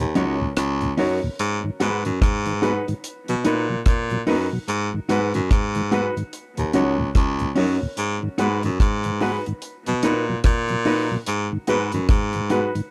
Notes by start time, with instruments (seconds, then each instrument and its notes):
0.00 baritone saxophone D#2
0.15 baritone saxophone C#2, tonewheel organ F#3 C#4 D#4, clean electric guitar C#4 F#4 A#4, upright piano D#4 F#4 C#5, closed hi-hat
0.40 tonewheel organ D#2 A#2
0.57 baritone saxophone C#2, cross-stick, closed hi-hat
0.81 tonewheel organ D#2 A#2, closed hi-hat
0.97 baritone saxophone F#2, tonewheel organ F#3 C#4 D#4, clean electric guitar C#4 F#4 A#4, upright piano D#4 F#4 C#5, open hi-hat
1.22 tonewheel organ D#2 A#2, muted clean electric guitar stroke
1.39 baritone saxophone G#2, closed hi-hat
1.64 tonewheel organ G#2 D#3
1.80 baritone saxophone G#2, tonewheel organ G#3 B3 F#4, clean electric guitar D#4 F#4 B4, upright piano F#4 G#4 B4, closed hi-hat
2.05 baritone saxophone F#2, tonewheel organ G#2 D#3, closed hi-hat
2.22 baritone saxophone G#2, kick, cross-stick, closed hi-hat
2.46 tonewheel organ G#2 D#3, closed hi-hat
2.62 tonewheel organ G#3 B3 F#4, clean electric guitar D#4 F#4 B4, upright piano F#4 G#4 B4, closed hi-hat
2.88 tonewheel organ G#2 D#3, closed hi-hat
3.04 closed hi-hat
3.28 tonewheel organ B2 F#3, baritone saxophone B2, closed hi-hat
3.44 baritone saxophone A#2, tonewheel organ A#3 B3 D#4, upright piano D#4 A#4 B4, clean electric guitar D#4 F#4 A#4, closed hi-hat
3.69 tonewheel organ B2 F#3
3.86 baritone saxophone A#2, kick, cross-stick, closed hi-hat
4.10 tonewheel organ B2 F#3, closed hi-hat
4.27 baritone saxophone F#2, tonewheel organ A#3 B3 D#4, clean electric guitar D#4 F#4 A#4, upright piano D#4 A#4 B4, open hi-hat
4.53 tonewheel organ B2 F#3
4.68 baritone saxophone G#2, closed hi-hat
4.94 tonewheel organ G#2 D#3
5.09 baritone saxophone G#2, tonewheel organ G#3 B3 F#4, clean electric guitar D#4 F#4 B4, upright piano F#4 G#4 B4, closed hi-hat
5.34 baritone saxophone F#2, tonewheel organ G#2 D#3, closed hi-hat
5.51 baritone saxophone G#2, kick, cross-stick, closed hi-hat
5.75 tonewheel organ G#2 D#3, closed hi-hat
5.91 tonewheel organ G#3 B3 F#4, clean electric guitar D#4 F#4 B4, upright piano F#4 G#4 B4, closed hi-hat
6.17 tonewheel organ G#2 D#3, closed hi-hat
6.33 closed hi-hat
6.57 tonewheel organ D#2 A#2, baritone saxophone D#2, closed hi-hat
6.73 baritone saxophone C#2, tonewheel organ F#3 C#4 D#4, clean electric guitar C#4 F#4 A#4, upright piano D#4 F#4 C#5, closed hi-hat
6.98 tonewheel organ D#2 A#2
7.15 baritone saxophone C#2, kick, cross-stick, closed hi-hat
7.39 tonewheel organ D#2 A#2, closed hi-hat
7.55 baritone saxophone F#2, tonewheel organ F#3 C#4 D#4, clean electric guitar C#4 F#4 A#4, upright piano D#4 F#4 C#5, open hi-hat
7.81 tonewheel organ D#2 A#2, muted clean electric guitar stroke
7.97 baritone saxophone G#2, closed hi-hat
8.23 tonewheel organ G#2 D#3
8.38 baritone saxophone G#2, tonewheel organ G#3 B3 F#4, clean electric guitar D#4 F#4 B4, upright piano F#4 G#4 B4, closed hi-hat
8.63 baritone saxophone F#2, tonewheel organ G#2 D#3, closed hi-hat
8.80 baritone saxophone G#2, kick, cross-stick, closed hi-hat
9.04 tonewheel organ G#2 D#3, closed hi-hat
9.21 tonewheel organ G#3 B3 F#4, clean electric guitar D#4 F#4 B4, upright piano F#4 G#4 B4, open hi-hat
9.46 tonewheel organ G#2 D#3, closed hi-hat
9.62 closed hi-hat
9.86 baritone saxophone B2, tonewheel organ B2 F#3, closed hi-hat
10.03 baritone saxophone A#2, tonewheel organ A#3 B3 D#4, upright piano D#4 A#4 B4, clean electric guitar D#4 F#4 A#4, closed hi-hat
10.29 tonewheel organ B2 F#3
10.44 baritone saxophone A#2, kick, cross-stick, closed hi-hat
10.68 tonewheel organ B2 F#3, closed hi-hat
10.85 tonewheel organ A#3 B3 D#4, clean electric guitar D#4 F#4 A#4, upright piano D#4 A#4 B4, open hi-hat
11.11 tonewheel organ B2 F#3
11.26 baritone saxophone G#2, closed hi-hat
11.52 tonewheel organ G#2 D#3
11.67 baritone saxophone G#2, tonewheel organ G#3 B3 F#4, clean electric guitar D#4 F#4 B4, upright piano F#4 G#4 B4, closed hi-hat
11.92 baritone saxophone F#2, tonewheel organ G#2 D#3, closed hi-hat
12.09 baritone saxophone G#2, kick, cross-stick, closed hi-hat
12.33 tonewheel organ G#2 D#3, closed hi-hat
12.50 tonewheel organ G#3 B3 F#4, clean electric guitar D#4 F#4 B4, upright piano F#4 G#4 B4, closed hi-hat
12.75 tonewheel organ G#2 D#3, closed hi-hat